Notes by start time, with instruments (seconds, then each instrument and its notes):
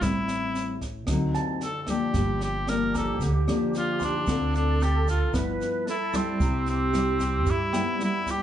0.01 upright bass A1, nylon-string guitar A2 G3 C4 E4, cor anglais E4, kick, cross-stick, snare, shaker
0.28 snare, shaker
0.55 snare, shaker
0.81 kick, snare, shaker
1.07 upright bass D2, nylon-string guitar D3 F#3 C4 D#4, kick, cross-stick, snare, shaker
1.34 grand piano A5, snare, shaker
1.61 cor anglais A4, snare, shaker
1.83 cor anglais A4, cross-stick, snare
1.87 nylon-string guitar F3 A#3 D4, cor anglais G4, kick, shaker
2.14 upright bass G1, nylon-string guitar G2, flute section G4, kick, snare, shaker
2.41 cor anglais G4, snare, shaker
2.67 nylon-string guitar F3 A#3 D4, cor anglais A#4, cross-stick, snare
2.94 cor anglais A4, grand piano A#5, kick, snare, shaker
3.21 upright bass D2, nylon-string guitar D3, kick, snare, shaker
3.47 nylon-string guitar F3 A#3 D4, cross-stick, snare, shaker
3.74 snare, shaker
3.78 cor anglais F4
4.00 grand piano C6, kick, snare, shaker
4.05 cor anglais D4
4.26 upright bass D2, nylon-string guitar D3 A3 C4 F4, flute section A4, kick, cross-stick, snare, shaker
4.53 cor anglais D4, snare, shaker
4.80 cor anglais G4, snare, shaker
5.07 cor anglais F4, kick, snare, shaker
5.32 upright bass G1, nylon-string guitar G2 F3 B3 E4, flute section B4, kick, cross-stick, snare, shaker
5.61 snare, shaker
5.87 cor anglais E4, flute section A4, snare
6.13 nylon-string guitar G3 E4, cor anglais C4, kick, cross-stick, snare, shaker
6.40 upright bass C2, nylon-string guitar C3, flute section G4, kick, snare, shaker
6.66 cor anglais C4, snare, shaker
6.93 nylon-string guitar G3 E4, cross-stick, snare, shaker
7.20 kick, snare, shaker
7.46 nylon-string guitar G2, upright bass G2, kick, snare, shaker
7.51 cor anglais E4
7.73 nylon-string guitar G3 B3 E4, grand piano G5, cross-stick, snare, shaker
8.00 nylon-string guitar G3 B3 E4, snare, shaker
8.04 cor anglais E4
8.26 cor anglais G4, kick, snare, shaker